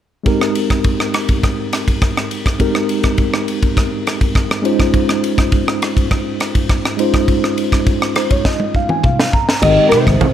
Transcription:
0.24 tine electric piano G#3 C4 D#4 G4 A#4, kick, ride
0.41 cross-stick
0.55 ride
0.70 kick, cross-stick, ride
0.84 kick, ride
1.00 cross-stick
1.14 cross-stick, ride
1.29 kick, ride
1.43 kick, cross-stick, ride
1.73 cross-stick, ride
1.88 kick, ride
2.02 kick, cross-stick, ride
2.17 cross-stick
2.31 ride
2.46 kick, cross-stick, ride
2.58 tine electric piano G#3 C4 D#4 G4 A#4, kick, ride
2.75 cross-stick
2.89 ride
3.03 kick, cross-stick, ride
3.18 kick, ride
3.34 cross-stick
3.48 ride
3.63 kick, ride
3.77 kick, cross-stick, ride
4.07 cross-stick, ride
4.21 kick, ride
4.35 kick, cross-stick, ride
4.51 cross-stick
4.62 tine electric piano G#3 C#4 D#4 F4 C5, ride
4.79 kick, cross-stick, ride
4.94 kick, ride
5.09 cross-stick
5.24 ride
5.38 kick, cross-stick, ride
5.52 kick, ride
5.68 cross-stick
5.82 cross-stick, ride
5.97 kick, ride
6.11 kick, cross-stick, ride
6.40 cross-stick, ride
6.55 kick, ride
6.69 kick, cross-stick, ride
6.85 cross-stick
6.97 tine electric piano G#3 C#4 D#4 F4 C5, ride
7.14 kick, cross-stick, ride
7.28 kick, ride
7.44 cross-stick
7.58 ride
7.72 kick, cross-stick, ride
7.87 kick, ride
8.02 cross-stick
8.16 tine electric piano C5, cross-stick, ride
8.30 tine electric piano C#5, kick, ride
8.45 tine electric piano D#5, kick, snare
8.60 high tom
8.75 tine electric piano F5, kick
8.89 tine electric piano G#5, mid tom
9.04 tine electric piano F5, kick, mid tom
9.20 snare
9.33 tine electric piano A#5, kick
9.49 snare
9.62 fingered electric bass G#1, bass clarinet D#3, tine electric piano G#3 C4 D#4 G4 A#4, nylon-string guitar D#5, kick, cross-stick, crash, muted conga
9.89 bass clarinet C3, nylon-string guitar C5, muted fingered electric bass stroke, cross-stick, ride, muted conga
10.07 fingered electric bass G#1, kick, cross-stick, ride
10.21 kick, ride, high conga

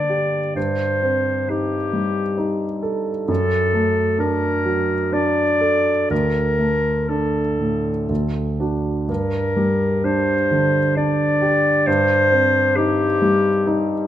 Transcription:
Already playing: grand piano G2 D3 A#3 D4, clarinet D5
0.09 grand piano G4
0.56 grand piano G2, clarinet C5
1.02 grand piano C4
1.48 grand piano D#4, clarinet G4
1.93 grand piano G3
2.37 grand piano D#4
2.83 grand piano A4
3.28 grand piano F#2, clarinet A4
3.74 grand piano A3
4.18 grand piano D4, clarinet A#4
4.65 grand piano F#3
5.12 grand piano D4, clarinet D5
5.61 grand piano A4
6.10 grand piano D2, clarinet A#4
6.59 grand piano A3
7.09 grand piano D4, clarinet A4
7.59 grand piano A2
8.09 grand piano D2
8.60 grand piano D4 F#4
9.08 grand piano G2, clarinet A#4
9.56 grand piano G3
10.04 grand piano D4, clarinet C5
10.51 grand piano D3
10.96 grand piano D4, clarinet D5
11.42 grand piano G4
11.87 grand piano G2, clarinet C5
12.31 grand piano C4
12.76 grand piano D#4, clarinet G4
13.22 grand piano G3
13.66 grand piano D#4

